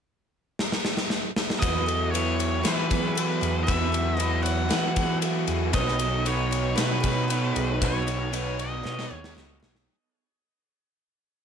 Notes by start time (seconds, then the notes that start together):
0.59 snare
0.72 snare
0.85 snare
0.97 snare
1.10 snare
1.36 snare
1.50 snare
1.59 E2 E3 F#3 B3 E4 F#4 B4 D#5, kick, ride
1.86 F#3 B3 E4 A4, ride
2.11 E3 F#3 B3 F#4 B4 C#5, ride
2.16 E4
2.39 C#5, ride
2.62 E2 E3 F#3 B4, snare, ride
2.66 E3 B3 E4 F#4
2.90 F#3 B3 E4 F#4 G#4, kick, ride
3.14 E3 F#3 B3 E4 F#4 A4, ride
3.41 E2 G#4, ride
3.63 E2 E3 F#3 B4 E5
3.68 E2 B3 E4 F#4, kick, ride
3.92 F#3 B3 E4 A4, ride
4.15 E3 F#3 B3 B4 D#5
4.20 E4 F#4, ride
4.43 C#5 F#5, ride
4.68 E2 E3 F#3 B3 E4 F#4 B4, snare, ride
4.72 E3
4.94 F#3 B3 E4 F#4 G#4, kick, ride
5.21 E3 F#3 B3 E4 F#4 A4, ride
5.47 E2 G#4, ride
5.72 B1 B2 D#3 F#3 B3 D#4 F#4 B4 C#5 D#5, kick, ride
5.88 snare
5.98 F#3 B3 D#4 A4, ride
6.23 D#3 F#3 B3 D#4 F#4 B4 C#5, ride
6.28 C#5
6.51 C#5, ride
6.76 B2 D#3 F#3 B3 D#4 F#4 B4, snare, ride
6.81 C#5
7.00 F#4 G#4 C#5, kick, ride
7.06 D#4
7.28 D#3 F#3 B3 D#4 F#4 A4, ride
7.33 C#5
7.56 B1 G#4, ride
7.80 B1 B2 D#3 F#3 B3 D#4 F#4 B4 C#5, kick, ride
7.85 C#5
8.07 F#3 B3 D#4 A4, ride
8.31 D#3 F#3 B3 D#4 F#4 B4 C#5, ride
8.59 C#5 D#5, ride
8.83 B2 D#3 F#3 B3 D#4 F#4 B4 C#5, snare
8.99 snare
9.10 D#2 D#4 F#4 G#4 C#5
9.24 snare
9.35 C#2 D#3 F#3 B3 D#4 F#4 A4 C#5, snare
9.60 B1 G#4, snare
9.75 snare